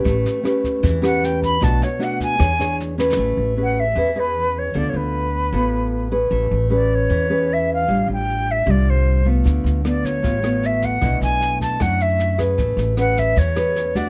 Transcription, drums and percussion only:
0.05 kick, snare
0.26 snare
0.45 cross-stick, snare
0.64 kick, snare
0.84 kick, snare
1.04 cross-stick, snare
1.24 snare
1.43 kick, snare
1.62 kick, cross-stick, snare
1.82 snare
2.02 snare
2.20 kick, snare
2.40 kick, cross-stick, snare
2.60 snare
2.80 snare
3.00 snare
3.13 snare
9.45 kick, snare
9.66 snare
9.85 cross-stick, snare
10.05 kick, snare
10.24 kick, snare
10.44 cross-stick, snare
10.63 snare
10.82 kick, snare
11.02 kick, cross-stick, snare
11.22 snare
11.41 snare
11.61 kick, snare
11.80 kick, cross-stick, snare
12.00 snare
12.19 snare
12.39 kick, cross-stick, snare
12.58 kick, snare
12.78 snare
12.97 cross-stick, snare
13.17 kick, snare
13.37 kick, snare
13.56 cross-stick, snare
13.76 snare
13.95 kick, snare

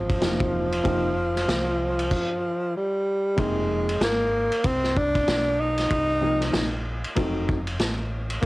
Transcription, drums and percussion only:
0.09 kick, ride
0.22 snare, hi-hat pedal, ride
0.40 kick
0.72 ride
0.85 kick, ride
1.36 snare, ride
1.49 snare, hi-hat pedal, ride
1.99 ride
2.11 kick, crash
3.38 kick, ride
3.89 ride
4.01 snare, hi-hat pedal, ride
4.52 ride
4.64 kick, ride
4.84 snare
4.97 kick
5.15 kick, ride
5.28 snare, hi-hat pedal, ride
5.78 snare, ride
5.91 kick, ride
6.41 snare, ride
6.53 snare, hi-hat pedal, ride
7.04 ride
7.16 kick, ride
7.49 kick
7.67 ride
7.79 snare, hi-hat pedal, ride
8.30 ride
8.43 kick

